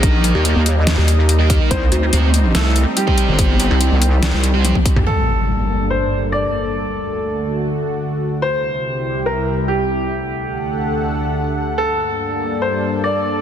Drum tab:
HH |x-x-x-x-x-x-x-x-|x-x-x-x-x-x-x-x-|x-x-x-x-x-x-x-x-|----------------|
SD |--------o-------|--------o-------|--------o-------|----------------|
T1 |----------------|----------------|------------oo--|----------------|
T2 |----------------|----------------|---------------o|----------------|
BD |o-------------o-|o------------o--|o------------oo-|----------------|

HH |----------------|----------------|----------------|----------------|
SD |----------------|----------------|----------------|----------------|
T1 |----------------|----------------|----------------|----------------|
T2 |----------------|----------------|----------------|----------------|
BD |----------------|----------------|----------------|----------------|